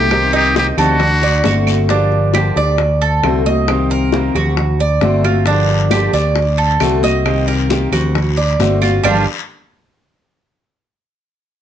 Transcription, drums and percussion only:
0.11 high bongo, high conga, long guiro, claves
0.34 high bongo, high conga
0.56 high bongo, high conga, short guiro
0.78 high bongo, high conga, low conga, short guiro, claves
1.00 high bongo, high conga, low conga, long guiro
1.22 high bongo, high conga
1.44 high bongo, low bongo, high conga, short guiro
1.67 high conga, short guiro, claves
1.89 high bongo, high conga
2.12 high bongo, high conga
2.34 high bongo, high conga, claves
2.56 high bongo, high conga
2.78 high bongo, high conga
3.01 high conga
3.24 high bongo, low bongo, high conga, claves
3.46 high bongo, high conga
3.68 high bongo, high conga, claves
3.90 high bongo, high conga
4.12 high bongo, high conga
4.35 high bongo, high conga, low conga, claves
4.57 high bongo, high conga, low conga
4.79 high bongo, high conga
5.01 high bongo, low bongo, high conga
5.24 high conga, claves
5.46 high bongo, long guiro
5.68 high bongo, high conga
5.91 high bongo, high conga, short guiro, claves
6.13 high bongo, high conga, short guiro
6.36 high bongo, high conga, long guiro
6.58 high conga
6.80 high bongo, low bongo, high conga, short guiro, claves
7.03 high bongo, high conga, short guiro
7.26 high bongo, high conga, long guiro, claves
7.48 high bongo, high conga
7.70 high bongo, high conga, short guiro
7.93 high bongo, high conga, low conga, short guiro, claves
8.15 high bongo, high conga, low conga, long guiro
8.37 high bongo, high conga
8.60 high bongo, low bongo, high conga, short guiro
8.82 high conga, short guiro, claves
9.04 low bongo, low conga, long guiro, claves

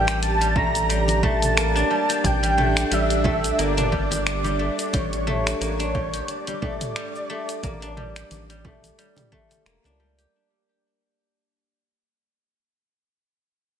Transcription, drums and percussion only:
0.08 finger snap, closed hi-hat, shaker
0.23 closed hi-hat, shaker
0.42 closed hi-hat, shaker
0.56 kick, low conga
0.75 closed hi-hat, high conga, shaker
0.90 closed hi-hat, shaker
1.08 closed hi-hat, muted conga, shaker
1.23 kick, low conga
1.42 closed hi-hat, mid tom, high conga, shaker
1.57 finger snap, closed hi-hat, shaker
1.77 shaker
2.10 closed hi-hat, shaker
2.24 kick, closed hi-hat, low conga, shaker
2.44 closed hi-hat, shaker
2.58 mid tom, muted conga
2.77 finger snap, closed hi-hat, shaker
2.92 closed hi-hat, shaker
3.10 closed hi-hat, shaker
3.24 kick, low conga
3.44 closed hi-hat, shaker
3.59 closed hi-hat, shaker
3.78 closed hi-hat, mid tom, muted conga, shaker
3.93 kick, high conga
4.11 closed hi-hat, muted conga, shaker
4.27 finger snap, closed hi-hat, shaker
4.44 muted conga, shaker
4.79 closed hi-hat, shaker
4.93 kick, closed hi-hat, low conga, shaker
5.13 closed hi-hat, shaker
5.27 mid tom, muted conga
5.47 finger snap, closed hi-hat, shaker
5.62 closed hi-hat, shaker
5.80 closed hi-hat, shaker
5.95 kick, low conga
6.13 closed hi-hat, high conga, shaker
6.28 closed hi-hat, shaker
6.47 closed hi-hat, muted conga, shaker
6.62 kick, low conga
6.81 closed hi-hat, mid tom, high conga, shaker
6.96 finger snap, closed hi-hat, shaker
7.15 shaker
7.49 closed hi-hat, shaker
7.63 kick, closed hi-hat, low conga, shaker
7.82 closed hi-hat, shaker
7.97 mid tom, muted conga
8.16 finger snap, closed hi-hat, shaker
8.31 closed hi-hat, high conga, shaker
8.50 closed hi-hat, shaker
8.65 kick, low conga
8.84 closed hi-hat, high conga, shaker
8.99 closed hi-hat, shaker
9.16 closed hi-hat, mid tom, muted conga, shaker
9.32 kick, high conga
9.51 closed hi-hat, muted conga, shaker
9.66 finger snap, closed hi-hat, shaker
9.84 muted conga, shaker
10.19 closed hi-hat, shaker

